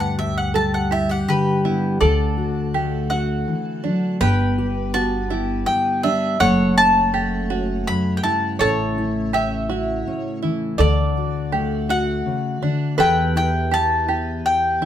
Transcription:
0.00 1.23 D2 medium
0.00 1.97 G2 medium
0.00 0.18 G4 medium
0.00 0.53 B4 medium
0.00 0.17 F#5 medium
0.19 0.54 G4 medium
0.19 0.35 E5 medium
0.38 0.54 F#5 medium
0.54 1.97 G3 medium
0.54 0.91 G4 medium
0.54 0.90 A4 medium
0.54 0.72 A5 medium
0.74 0.90 F#5 medium
0.91 1.09 E4 medium
0.91 1.63 G4 medium
0.91 1.09 E5 medium
1.09 2.01 G4 medium
1.09 1.27 F#5 medium
1.28 1.97 D3 medium
1.28 1.97 G4 medium
1.28 2.00 B4 medium
1.65 1.97 B3 medium
1.65 2.00 E4 medium
2.01 3.44 D2 medium
2.01 4.16 D3 medium
2.01 6.36 D3 medium
2.01 4.19 A3 medium
2.01 4.17 A4 medium
2.01 2.73 A4 medium
2.01 3.07 D5 medium
2.01 4.19 F#5 medium
2.37 3.10 F#4 medium
2.74 4.21 A3 medium
2.74 3.10 G4 medium
3.10 3.83 F#4 medium
3.10 4.16 F#4 medium
3.10 4.16 F#5 medium
3.48 3.84 E3 medium
3.84 4.21 F#3 medium
3.84 4.20 D4 medium
4.20 5.63 G1 loud
4.20 6.36 G2 medium
4.20 6.38 G3 medium
4.20 6.38 B3 medium
4.20 4.93 G4 medium
4.20 6.47 B4 loud
4.20 4.94 G5 loud
4.58 5.30 G4 medium
4.94 5.67 B3 medium
4.94 5.30 F#4 medium
4.94 5.63 A5 loud
5.30 6.02 E4 medium
5.30 6.36 G4 medium
5.66 6.36 B3 medium
5.66 6.01 G5 loud
6.03 6.36 G3 medium
6.03 6.40 D4 medium
6.03 6.38 E5 medium
6.40 7.83 F#1 loud
6.40 7.86 F#2 medium
6.40 10.75 C#3 medium
6.40 12.94 A3 medium
6.40 7.12 A4 medium
6.40 8.58 C#5 loud
6.40 8.57 F#5 medium
6.40 6.77 F#5 loud
6.78 7.51 C#4 medium
6.78 7.87 A5 loud
7.14 9.34 A3 medium
7.14 7.49 G4 medium
7.50 8.97 C#4 medium
7.50 8.22 F#4 medium
7.87 8.23 F#2 medium
7.87 8.17 B5 loud
8.17 8.23 G5 medium
8.23 8.60 G2 medium
8.23 8.59 E4 medium
8.23 8.59 A5 medium
8.59 10.02 A1 medium
8.59 10.79 A2 medium
8.59 10.78 E4 medium
8.59 9.32 A4 medium
8.59 10.38 C#5 medium
8.59 9.36 A5 loud
8.98 9.70 E4 medium
9.33 10.06 C#4 medium
9.33 9.69 G4 medium
9.33 10.03 E5 medium
9.69 10.76 E4 medium
9.69 10.41 F#4 medium
10.07 10.75 C#4 medium
10.42 10.79 E3 medium
10.42 10.78 E4 medium
10.78 12.21 D2 medium
10.78 12.25 D3 medium
10.78 11.51 A4 medium
10.78 13.05 D5 loud
10.78 11.93 D5 medium
10.78 12.96 F#5 medium
11.17 11.89 F#4 medium
11.52 12.99 A3 medium
11.52 11.88 G4 medium
11.89 12.61 F#4 medium
11.89 12.95 F#4 medium
11.89 12.95 F#5 medium
12.26 12.61 C#3 medium
12.62 12.98 D3 medium
12.62 12.98 D4 medium
12.98 14.80 E2 medium
12.98 14.41 E2 medium
12.98 14.85 E3 medium
12.98 14.85 B3 medium
12.98 14.85 G4 medium
12.98 13.70 A4 medium
12.98 14.85 B4 loud
12.98 13.36 G5 loud
13.36 14.07 E4 medium
13.36 13.73 G5 loud
13.71 14.85 B3 medium
13.71 14.07 G4 medium
13.71 14.45 A5 loud
14.08 14.85 E4 medium
14.08 14.80 G4 medium
14.46 14.85 G5 loud
14.81 14.85 E2 medium
14.81 14.85 E4 medium

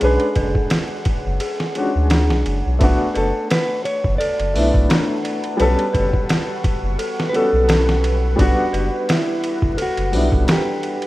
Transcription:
0.00 0.18 B1 loud
0.00 1.71 G#3 medium
0.00 1.72 C#4 medium
0.00 1.73 D4 medium
0.00 2.43 G#4 medium
0.00 2.78 C#5 medium
0.00 2.76 F#5 medium
0.00 2.78 G#5 medium
0.00 ride medium
0.04 1.73 B4 loud
0.20 ride soft
0.36 0.53 F#1 loud
0.36 1.37 B4 medium
0.36 kick medium
0.36 ride medium
0.55 kick loud
0.70 snare loud
0.70 ride medium
1.05 kick loud
1.05 ride medium
1.26 1.39 F#1 loud
1.40 1.74 G#4 medium
1.40 ride medium
1.60 snare soft
1.75 1.95 G#3 medium
1.75 1.96 C#4 medium
1.75 1.96 D4 medium
1.75 1.96 F#4 medium
1.75 ride medium
1.95 2.32 D2 loud
2.10 2.44 D4 loud
2.10 snare loud
2.10 ride medium
2.30 2.44 B1 medium
2.30 snare soft
2.46 2.62 F#1 loud
2.46 ride medium
2.66 2.79 B1 medium
2.79 2.97 B1 loud
2.79 4.50 A3 medium
2.79 4.51 B3 medium
2.79 4.52 D4 medium
2.79 11.07 B4 medium
2.79 11.07 F#5 medium
2.79 5.57 A5 medium
2.79 kick loud
2.79 ride medium
2.83 4.52 F#4 medium
3.14 3.32 F#1 medium
3.14 3.51 A4 medium
3.14 4.16 B4 medium
3.14 ride medium
3.50 3.85 B4 medium
3.50 snare loud
3.50 ride loud
3.85 4.18 C#5 loud
3.85 ride medium
4.04 4.18 F#1 loud
4.04 kick medium
4.18 4.53 A4 medium
4.18 5.55 D5 loud
4.18 ride medium
4.39 4.56 F#1 medium
4.39 ride soft
4.53 4.71 B1 loud
4.53 5.55 A3 medium
4.53 5.56 B3 medium
4.53 5.56 D4 medium
4.53 open hi-hat medium
4.58 5.57 E4 medium
4.74 4.88 B1 medium
4.74 kick medium
4.89 5.23 D4 loud
4.89 snare loud
4.89 ride medium
5.25 ride medium
5.44 ride soft
5.57 5.76 B1 loud
5.57 7.29 G3 medium
5.57 7.30 B3 medium
5.57 7.30 C#4 medium
5.57 6.60 B4 medium
5.57 8.36 G5 medium
5.57 8.36 C#6 medium
5.57 ride medium
5.62 7.31 A4 loud
5.79 ride soft
5.93 6.11 F#1 loud
5.93 6.95 B4 medium
5.93 kick medium
5.93 ride medium
6.13 kick medium
6.29 snare loud
6.29 ride medium
6.64 kick loud
6.64 ride medium
6.82 6.97 F#1 loud
6.99 7.32 A4 medium
6.99 ride medium
7.20 snare medium
7.29 7.53 G3 medium
7.29 7.35 B4 medium
7.34 7.54 B3 medium
7.34 7.54 C#4 medium
7.34 7.54 F#4 medium
7.34 8.43 A4 loud
7.34 ride medium
7.52 8.35 B1 loud
7.68 8.01 C#4 loud
7.68 snare loud
7.68 ride medium
7.89 snare medium
8.04 ride medium
8.36 8.55 B1 loud
8.36 10.08 G3 medium
8.36 10.08 B3 medium
8.36 10.09 D4 medium
8.36 kick loud
8.36 ride medium
8.40 10.10 F#4 loud
8.40 9.05 F#4 loud
8.73 8.90 F#1 medium
8.73 9.75 B4 medium
8.73 ride medium
9.09 9.76 E4 medium
9.09 snare loud
9.09 ride medium
9.44 ride medium
9.62 9.76 F#1 loud
9.62 kick loud
9.77 10.11 A4 medium
9.77 ride medium
9.82 10.52 F#4 medium
9.97 10.15 F#1 medium
9.97 ride soft
10.12 10.30 B1 loud
10.12 11.07 G3 medium
10.12 11.07 B3 medium
10.12 11.07 D4 medium
10.12 11.07 E4 medium
10.12 open hi-hat medium
10.32 10.46 B1 loud
10.32 kick loud
10.47 10.81 D4 loud
10.47 snare loud
10.47 ride medium
10.52 11.07 G4 loud
10.83 ride medium
11.02 ride soft

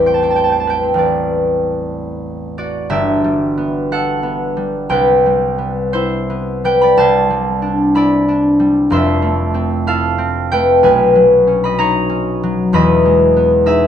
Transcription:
0.00 0.93 A1 medium
0.00 2.91 E2 medium
0.00 0.94 G3 medium
0.00 2.60 B3 medium
0.00 0.82 C4 medium
0.00 1.77 D4 medium
0.00 0.21 G4 medium
0.00 2.74 A4 medium
0.00 0.66 B4 medium
0.00 0.97 D5 loud
0.06 0.36 C5 medium
0.06 0.18 G5 medium
0.14 0.26 A5 medium
0.22 0.48 G4 medium
0.22 0.34 G5 medium
0.30 0.42 A5 medium
0.36 2.93 C5 medium
0.36 0.49 G5 medium
0.44 0.57 A5 medium
0.50 2.90 G4 soft
0.50 0.65 G5 medium
0.60 0.73 A5 medium
0.67 0.97 B4 medium
0.67 4.60 G5 medium
0.83 0.95 C4 medium
0.94 2.89 A1 medium
0.94 3.23 G3 soft
0.94 2.91 C4 medium
0.94 4.88 B4 soft
0.98 2.57 D5 medium
2.58 4.95 F#4 medium
2.58 3.14 D5 medium
2.90 4.94 G1 medium
2.90 6.81 G4 medium
2.90 4.61 E5 loud
3.24 4.55 G3 medium
3.58 4.22 B3 medium
3.92 4.95 A4 medium
3.92 4.94 F#5 loud
4.23 5.57 B3 medium
4.57 5.25 G3 medium
4.89 6.96 C2 medium
4.89 6.64 B4 medium
4.89 6.64 G5 loud
5.26 6.63 G3 medium
5.58 6.29 B3 medium
5.93 7.94 E4 medium
5.93 6.98 C5 loud
6.30 8.93 B3 medium
6.64 7.29 G3 medium
6.64 8.93 B4 medium
6.64 8.93 G5 loud
6.81 7.95 D5 medium
6.81 7.09 B5 loud
6.97 8.93 C2 loud
6.97 10.86 C5 loud
6.97 8.62 A5 loud
7.30 8.58 G3 medium
7.62 8.27 D4 medium
7.95 9.86 E4 medium
7.95 8.94 D5 medium
7.95 8.93 B5 loud
8.28 8.94 D4 medium
8.60 8.93 G3 medium
8.90 10.85 F1 medium
8.90 10.86 F2 loud
8.90 10.87 E5 loud
8.90 10.86 C6 loud
9.22 10.51 A3 medium
9.54 10.17 C4 medium
9.87 10.86 E4 medium
9.87 10.86 A4 loud
9.87 10.86 F5 loud
10.18 10.85 C4 medium
10.52 10.86 A3 medium
10.52 10.83 B4 medium
10.52 11.05 G5 loud
10.83 12.75 B1 medium
10.83 13.87 B4 medium
10.83 12.17 G#5 loud
11.15 12.42 F#3 medium
11.47 12.08 C#4 medium
11.64 12.74 D#5 loud
11.64 11.90 B5 loud
11.79 13.65 D#4 medium
11.79 12.75 C#5 loud
11.79 12.75 A#5 loud
12.10 12.75 C#4 medium
12.43 12.76 F#3 medium
12.73 13.87 E1 medium
12.73 13.87 E2 loud
12.73 13.87 D#5 loud
12.73 13.87 B5 loud
13.05 13.87 G#3 medium
13.37 13.87 B3 medium
13.66 13.87 D#4 medium
13.66 13.87 G#4 medium
13.66 13.87 E5 loud

